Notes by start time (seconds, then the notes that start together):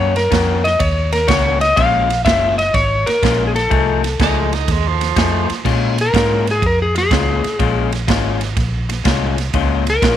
Already playing: F#2 D#3 A#3 C#4 F#4 C#5
0.15 A#4, muted clean electric guitar stroke, snare, ride
0.31 F2 D#3 A#3 C#4 F#4, kick, snare, ride
0.64 D#5, muted clean electric guitar stroke, snare, ride
0.79 D#2 C#5, muted clean electric guitar stroke, kick, ride
1.12 A#4, muted clean electric guitar stroke, snare, ride
1.27 C#2 D#3 A#3 C#4 F#4 C#5, kick, snare, ride
1.61 D#5, muted clean electric guitar stroke, snare, ride
1.76 A#1 A#2 G#3 C#4 F4 F5, kick, ride
2.10 muted clean electric guitar stroke, snare, ride
2.25 F#1 A#2 G#3 C#4 F4 E5, kick, snare, ride
2.58 D#5, muted clean electric guitar stroke, snare, ride
2.74 G#1 C#5, muted clean electric guitar stroke, kick, snare, ride
3.06 A#4, muted clean electric guitar stroke, snare, ride
3.23 A#1 A#2 G#3 C#4 F4, kick, snare, ride
3.47 G#4
3.55 A4, muted clean electric guitar stroke, snare, ride
3.70 C2 F3 A3 D#4 G#4, kick, ride
4.04 muted clean electric guitar stroke, snare, ride
4.20 C#2 F3 A3 D#4 G#4, kick, snare, ride
4.38 G#3
4.53 D#4, muted clean electric guitar stroke, snare, ride
4.68 D#2 G#3, muted clean electric guitar stroke, kick, snare, ride
4.87 F3
5.01 muted clean electric guitar stroke, snare, ride
5.16 F2 F3 A3 D#4 G#4, kick, snare, ride
5.49 muted clean electric guitar stroke, muted fingered electric bass stroke, snare, ride
5.65 A#2 G#3 C#4 F4, kick, snare, crash
5.98 A#4, muted clean electric guitar stroke, snare, ride
6.13 G#2 A#2 G#3 C#4 F4, kick, snare, ride
6.47 G#4, muted clean electric guitar stroke, snare, ride
6.62 F2, muted clean electric guitar stroke, kick, ride
6.66 A#4
6.82 G#4
6.95 G#4, muted clean electric guitar stroke, snare, ride
7.11 C#2 A#2 G#3 C#4 F4, kick, snare, ride
7.43 muted clean electric guitar stroke, snare, ride
7.59 A#1 A#2 G#3 C#4 F4, kick, ride
7.92 muted clean electric guitar stroke, snare, ride
8.07 G#1 A#2 G#3 C#4 F4, kick, snare, ride
8.41 muted clean electric guitar stroke, snare, ride
8.57 A#1, muted clean electric guitar stroke, kick, snare, ride
8.89 muted clean electric guitar stroke, snare, ride
9.04 C2 A#2 G#3 C#4 F4, kick, snare, ride
9.38 muted clean electric guitar stroke, snare, ride
9.54 C#2 A#2 G#3 C#4 F4, kick, ride
9.86 A#4, muted clean electric guitar stroke, snare, ride
10.02 A#1 A#2 G#3 C#4 F4, kick, snare, ride